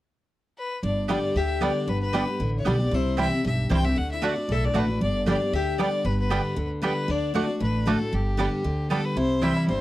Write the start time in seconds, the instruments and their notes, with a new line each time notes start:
0.58 fiddle B4
0.83 upright bass G1, steel-string acoustic guitar G2, resonator guitar played with a steel bar D4, fiddle D5
1.08 steel-string acoustic guitar D3 G3 B3 G4, five-string banjo G3 B3 D4, mandolin B3 G4 D5 G5, resonator guitar played with a steel bar D4, fiddle D5
1.35 upright bass D2, steel-string acoustic guitar D3, resonator guitar played with a steel bar G4, fiddle E5
1.61 steel-string acoustic guitar D3 G3 B3 G4, five-string banjo G3 B3 D4, mandolin B3 G4 D5 G5, resonator guitar played with a steel bar D4, fiddle D5
1.87 upright bass G1, steel-string acoustic guitar G2, resonator guitar played with a steel bar B3, fiddle B4
2.01 resonator guitar played with a steel bar B3, fiddle B4
2.13 steel-string acoustic guitar D3 G3 B3 G4, five-string banjo G3 B3 D4, mandolin B3 G4 D5 G5
2.27 steel-string acoustic guitar B3 G4
2.40 upright bass A1, steel-string acoustic guitar D3
2.58 resonator guitar played with a steel bar E4, fiddle C#5
2.65 upright bass B1, steel-string acoustic guitar D3 G3 B3 G4, five-string banjo G3 B3 D4, mandolin B3 G4 D5 G5, resonator guitar played with a steel bar D4, fiddle D5
2.79 steel-string acoustic guitar B3 G4
2.91 upright bass C2, steel-string acoustic guitar C3, resonator guitar played with a steel bar E4, fiddle C5
3.17 steel-string acoustic guitar E3 G3 C4 E4, five-string banjo G3 C4 E4, mandolin C4 E4 C5 G5, resonator guitar played with a steel bar G4
3.21 fiddle E5
3.31 steel-string acoustic guitar C4 E4
3.44 upright bass B1, steel-string acoustic guitar G2, resonator guitar played with a steel bar G4, fiddle E5
3.69 upright bass C2, steel-string acoustic guitar E3 G3 C4 E4, five-string banjo G3 C4 E4, mandolin C4 E4 C5 G5, resonator guitar played with a steel bar C5, fiddle G5
3.84 steel-string acoustic guitar C4 E4, resonator guitar played with a steel bar G4, fiddle E5
3.96 steel-string acoustic guitar D3, resonator guitar played with a steel bar F#4, fiddle F#5
4.12 resonator guitar played with a steel bar E4, fiddle E5
4.22 steel-string acoustic guitar D3 A3 D4 F#4, mandolin A3 F#4 D5 F#5, five-string banjo A3 D4, fiddle D5
4.26 resonator guitar played with a steel bar D4
4.38 steel-string acoustic guitar D4
4.48 upright bass B1, steel-string acoustic guitar A2, resonator guitar played with a steel bar A4, fiddle E5
4.65 resonator guitar played with a steel bar D4, fiddle D5
4.74 upright bass A1, steel-string acoustic guitar D3 A3 D4 F#4, mandolin A3 F#4 D5 F#5, five-string banjo A3 D4
4.78 resonator guitar played with a steel bar D4, fiddle B4
4.88 steel-string acoustic guitar D4 F#4
5.01 upright bass G1, steel-string acoustic guitar G2, resonator guitar played with a steel bar D4, fiddle D5
5.26 steel-string acoustic guitar D3 G3 B3 G4, five-string banjo G3 B3 D4, mandolin B3 G4 D5 G5, resonator guitar played with a steel bar D4, fiddle D5
5.40 steel-string acoustic guitar B3 G4
5.52 upright bass D2, steel-string acoustic guitar D3, resonator guitar played with a steel bar G4, fiddle E5
5.78 steel-string acoustic guitar D3 G3 B3 G4, five-string banjo G3 B3 D4, mandolin B3 G4 D5 G5, resonator guitar played with a steel bar D4, fiddle D5
6.05 upright bass G1, steel-string acoustic guitar G2, resonator guitar played with a steel bar B3, fiddle B4
6.20 resonator guitar played with a steel bar B3, fiddle B4
6.30 steel-string acoustic guitar D3 G3 B3 G4, five-string banjo G3 B3 D4, mandolin B3 G4 D5 G5
6.56 upright bass D2, steel-string acoustic guitar D3
6.82 steel-string acoustic guitar D3 G3 B3 G4, five-string banjo G3 B3 D4, mandolin B3 G4 D5 G5, resonator guitar played with a steel bar B3, fiddle B4
7.08 upright bass D2, steel-string acoustic guitar D3, resonator guitar played with a steel bar D4, fiddle D5
7.34 steel-string acoustic guitar D3 A3 D4 F#4, mandolin A3 F#4 D5 F#5, five-string banjo A3 D4, resonator guitar played with a steel bar D4, fiddle D5
7.47 steel-string acoustic guitar D4 F#4
7.60 upright bass A1, steel-string acoustic guitar A2, resonator guitar played with a steel bar D4, fiddle B4
7.86 steel-string acoustic guitar D3 A3 D4 F#4, mandolin A3 F#4 D5 F#5, resonator guitar played with a steel bar A3, five-string banjo A3 D4, fiddle A4
7.99 steel-string acoustic guitar D4 F#4
8.13 upright bass G1, steel-string acoustic guitar G2, resonator guitar played with a steel bar G3, fiddle G4
8.37 steel-string acoustic guitar D3 G3 B3 G4, five-string banjo G3 B3 D4, mandolin B3 G4 D5 G5
8.64 upright bass D2, steel-string acoustic guitar D3
8.90 steel-string acoustic guitar D3 G3 B3 G4, five-string banjo G3 B3 D4, mandolin B3 G4 D5 G5, fiddle A4
9.05 fiddle B4
9.16 upright bass C2, steel-string acoustic guitar C3, five-string banjo E4, fiddle C5
9.42 steel-string acoustic guitar E3 G3 C4 E4, five-string banjo G3, mandolin C4 E4 C5 G5, fiddle E5
9.57 five-string banjo E4
9.68 upright bass G1, steel-string acoustic guitar G2, five-string banjo C4, fiddle C5